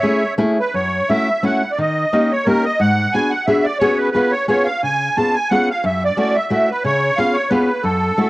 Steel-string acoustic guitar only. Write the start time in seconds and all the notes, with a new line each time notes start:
0.03 A3 C#4 E4 G#4
0.38 A3 C#4 E4 G#4
0.74 F#2
1.10 A3 C#4 E4 F#4
1.43 A3 C#4 E4 F#4
1.78 D#3
2.13 A#3 C#4 D#4 G4
2.46 A#3 C#4 D#4 G4
2.80 G#2
3.14 B3 D4 F#4 G#4
3.48 B3 D4 F#4 G#4
3.81 B3 C#4 F#4 G#4
4.14 B3 C#4 F4 G#4
4.48 B3 C#4 F4 G#4
4.83 C#3
5.17 B3 C#4 F4 G#4
5.51 B3 C#4 F4 G#4
5.84 F#2
6.17 A3 C#4 E4 F#4
6.50 A3 C#4 E4 F#4
6.84 C#3
7.18 B3 C#4 F4 G#4
7.51 B3 C#4 F4 G#4
7.84 F#2
8.18 A3 C#4 E4 F#4